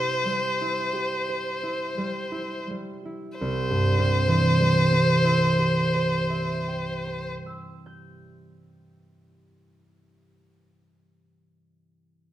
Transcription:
Already playing: harp C3 G3 E4 G4 C5, violin C5
0.26 harp G3
0.62 harp E4
0.93 harp G4
1.29 harp C5
1.63 harp E4
1.98 harp G3
2.32 harp E4
2.70 harp G3
3.05 harp E4
3.38 harp C2, violin C5
3.70 harp G2
3.99 harp C3
4.28 harp E3
4.60 harp G3
4.92 harp C4
5.24 harp E4
5.59 harp G4
5.95 harp C5
6.30 harp E5
6.68 harp G5
7.07 harp C6
7.46 harp E6
7.86 harp G6

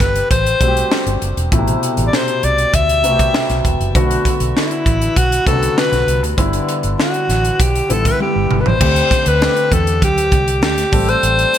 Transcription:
Already playing: grand piano C3 A3 B3 G4
0.00 fingered electric bass G1, alto saxophone B4, kick, snare, closed hi-hat
0.16 closed hi-hat
0.31 fingered electric bass A1, alto saxophone C5, kick, closed hi-hat
0.46 closed hi-hat
0.60 fingered electric bass B1, grand piano G3 A3 C4 F#4, kick, closed hi-hat
0.68 grand piano G4
0.77 closed hi-hat
0.92 snare
1.06 fingered electric bass G1, closed hi-hat
1.22 fingered electric bass F#1, closed hi-hat
1.37 fingered electric bass E1, closed hi-hat
1.51 fingered electric bass A1, grand piano B2 A3 E4, kick, closed hi-hat
1.58 grand piano C3
1.67 closed hi-hat
1.83 closed hi-hat
1.97 fingered electric bass A1, closed hi-hat
2.07 alto saxophone D5
2.13 alto saxophone C5, snare
2.28 closed hi-hat
2.43 fingered electric bass C2, alto saxophone D5, closed hi-hat
2.58 closed hi-hat
2.74 fingered electric bass D2, alto saxophone E5, kick, closed hi-hat
2.89 closed hi-hat
3.03 fingered electric bass C2, grand piano C3 A3 B3 F#4, closed hi-hat
3.11 grand piano G4
3.19 kick, closed hi-hat
3.34 snare
3.49 fingered electric bass B1, snare, closed hi-hat
3.65 fingered electric bass E1, kick, closed hi-hat
3.80 fingered electric bass F#1, closed hi-hat
3.95 fingered electric bass B1, grand piano D3 A3 B3 F#4, kick, closed hi-hat
4.11 closed hi-hat
4.25 kick, closed hi-hat
4.40 fingered electric bass B1, closed hi-hat
4.57 alto saxophone E4, snare
4.71 closed hi-hat
4.86 fingered electric bass A1, kick, closed hi-hat
5.02 closed hi-hat
5.16 fingered electric bass B1, alto saxophone F#4, kick, closed hi-hat
5.32 closed hi-hat
5.46 fingered electric bass C2, grand piano C3 A3 B3 F#4, alto saxophone A4, kick, closed hi-hat
5.53 grand piano D3
5.63 closed hi-hat
5.78 alto saxophone B4, snare
5.92 fingered electric bass B1, snare, closed hi-hat
6.07 fingered electric bass C2, closed hi-hat
6.23 fingered electric bass D2, closed hi-hat
6.38 fingered electric bass G1, grand piano D3 G3 B3 E4, kick, closed hi-hat
6.53 closed hi-hat
6.69 closed hi-hat
6.83 fingered electric bass G1, closed hi-hat
7.00 alto saxophone F#4, snare
7.14 closed hi-hat
7.29 fingered electric bass A1, snare, closed hi-hat
7.45 closed hi-hat
7.60 fingered electric bass B1, alto saxophone G4, kick, closed hi-hat
7.75 closed hi-hat
7.89 fingered electric bass A1, grand piano D3 G3 B3 E4, alto saxophone A4, closed hi-hat
8.05 alto saxophone B4, kick, closed hi-hat
8.20 alto saxophone G4, high tom
8.36 fingered electric bass G1
8.51 fingered electric bass G1, mid tom
8.61 alto saxophone B4
8.66 fingered electric bass A1, alto saxophone C5, floor tom
8.80 fingered electric bass D2, grand piano D3 A3 C4 G4, kick, crash
8.96 closed hi-hat
9.11 kick, closed hi-hat, muted conga
9.26 fingered electric bass D2, alto saxophone B4, closed hi-hat
9.41 grand piano D3 A3 C4 G4, snare, high conga
9.56 closed hi-hat
9.72 fingered electric bass E2, alto saxophone A4, kick, closed hi-hat, muted conga
9.87 closed hi-hat
10.02 fingered electric bass D2, alto saxophone G4, kick, closed hi-hat, muted conga, low conga
10.18 closed hi-hat
10.31 fingered electric bass C2, kick, closed hi-hat, muted conga
10.48 closed hi-hat
10.62 fingered electric bass D2, alto saxophone G4, snare, high conga
10.78 snare, closed hi-hat
10.92 fingered electric bass A1, grand piano G3 A3 C4 A4, kick, open hi-hat, high conga
11.08 alto saxophone C5, closed hi-hat
11.23 fingered electric bass A1, closed hi-hat
11.39 closed hi-hat
11.53 closed hi-hat, muted conga

